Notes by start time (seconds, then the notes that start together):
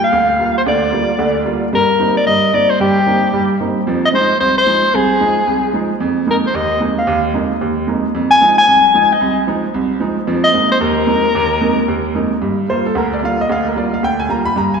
0.04 F5
0.13 D2
0.39 G3 A#3 F4
0.58 C5
0.66 D2 D3 D5
0.92 G3 A#3 F4
1.19 D2 D3
1.45 G3 A#3 F4
1.73 G2 G3 A#4
1.99 G2 A#3 C4 D#4
2.17 D5
2.26 G2 D#5
2.53 G2 A#3 C4 D#4 D5
2.70 C5
2.80 G2 G3 G4
3.06 G2 A#3 C4 D#4
3.33 G2 G3
3.60 G2 A#3 C4 D#4
3.87 F2 F3
4.05 D#5
4.13 F3 G#3 D#4 C5
4.40 C2 C5
4.58 C5
4.66 F3 G#3 D#4
4.94 C2 G#4
5.20 F3 G#3 D#4
5.47 C2
5.73 F3 G#3 D#4
6.00 F2
6.27 F2 G#3 A#3 D#4 A#4
6.47 C5
6.54 D#2 D#5
6.80 F2 G#3 A#3 D#4
6.98 F5
7.07 D#2
7.34 F2 G#3 A#3 D#4
7.61 D#2
7.87 F2 G#3 A#3 D#4
8.15 F2
8.30 G#5
8.41 F3 G#3 D#4
8.58 G#5
8.67 C2
8.94 F3 G#3 D#4
9.13 D#5
9.21 C2
9.47 F3 G#3 D#4
9.74 C2
10.00 F3 G#3 D#4
10.27 F2 F3
10.44 D#5
10.54 F2 G#3 A#3 D#4
10.72 C5
10.80 D#2 A#4
11.07 F2 G#3 A#3 D#4
11.35 D#2
11.61 F2 G#3 A#3 D#4
11.88 D#2
12.15 F2 G#3 A#3 D#4
12.42 G2
12.68 G3 A#3 F4 C5
12.86 A4
12.95 D2 A#4
13.14 D5
13.22 G3 A#3 F4 F5
13.41 D#5
13.49 D2 F5
13.68 A#4
13.75 G3 A#3 F4 D5
13.94 F5
14.03 D2 G5
14.20 G#5
14.29 G3 A#3 F4 A#5
14.46 B5
14.56 G2 A#5
14.74 G#5